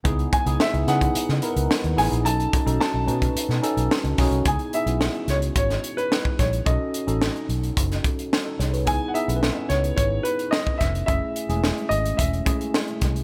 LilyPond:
<<
  \new Staff \with { instrumentName = "Grand piano" } { \time 4/4 \key cis \minor \tempo 4 = 109 r8 gis''8 e''8 fis''2 gis''8 | a''4 a''2~ a''8 r8 | gis''8 e''4 cis''8 cis''8. b'8. cis''8 | dis''4. r2 r8 |
gis''16. fis''32 e''4 cis''8 cis''8 b'8 dis''8 e''8 | e''4. dis''8 e''4. r8 | }
  \new Staff \with { instrumentName = "Tine electric piano" } { \time 4/4 \key cis \minor << { r1 | r1 | r1 | r2. r16 <dis' a'>16 <gis' cis''>16 <fis' b'>16~ |
<fis' b'>16 r2. r8. | r1 | } \\ { <b dis' e' gis'>8. <b dis' e' gis'>8. <b dis' e' gis'>4 <b dis' e' ais' b'>4 <b dis' e' gis'>8 | <cis' dis' fis' a'>8. <cis' dis' fis' a'>8. <cis' dis' fis' b'>4 <cis' dis' fis' a'>4 <cis' dis' fis' gis'>8 | <b dis' e' gis'>8 <b dis' e' gis'>16 <b cis' e' fis'>4.~ <b cis' e' fis'>16 r4. | <cis' dis' fis' a'>8. <cis' dis' fis' a'>4. r4. r16 |
<b dis' e' gis'>8 <b dis' e' gis'>16 <b cis' e' a' b'>4.~ <b cis' e' a' b'>16 r4. | <a cis' e' gis'>8. <gis a cis' e' gis'>4. r16 <a cis' e' gis'>4~ <a cis' e' gis'>16 r16 | } >> }
  \new Staff \with { instrumentName = "Fingered electric bass" } { \clef bass \time 4/4 \key cis \minor cis,8 r16 cis,16 r16 cis,16 cis8 r16 cis16 r16 cis,16 r16 dis,16 a,,16 ais,,16 | b,,8 r16 b,,16 r16 b,,16 b,8 r16 b,16 r16 b,,16 r16 cis,16 b,,16 bis,,16 | cis,16 r8 b,,8 r16 cis,8 gis,,8 r4 ais,,8 | b,,16 r8 a,,8 r16 b,,8 fis,,8 r4 bis,,8 |
cis,16 r8 b,,8 r16 cis,8 gis,,8 r4 eis,,8 | fis,,16 r8 e,,8 r16 gis,,8 e,,8 r4 bis,,8 | }
  \new DrumStaff \with { instrumentName = "Drums" } \drummode { \time 4/4 <hh bd>16 hh16 <hh bd>16 hh16 sn16 hh16 <hh sn>16 <hh bd>16 hh16 sn16 hh16 hh16 sn16 hh16 <hho sn>16 hh16 | hh16 hh16 <hh bd>16 hh16 sn8 hh16 <hh bd>16 hh16 sn16 hh16 hh16 sn16 hh16 <hho bd sn>16 hh16 | <hh bd>16 hh16 hh16 hh16 sn16 hh16 <hh sn>16 hh16 <hh bd>16 <hh sn>16 hh16 hh16 sn16 bd16 <hh bd sn>16 hh16 | <hh bd>8 hh16 hh16 sn16 hh16 hh16 hh16 <hh bd>16 <hh sn>16 <hh bd>16 hh16 sn8 <hh sn>16 hh16 |
<hh bd>8 hh16 hh16 sn8 <hh sn>16 hh16 <hh bd>8 hh16 hh16 sn16 bd16 <hh bd sn>16 hh16 | <hh bd>8 hh16 hh16 sn16 hh16 hh16 hh16 <hh bd>16 hh16 <hh bd>16 hh16 sn16 hh16 <hh bd sn>16 hh16 | }
>>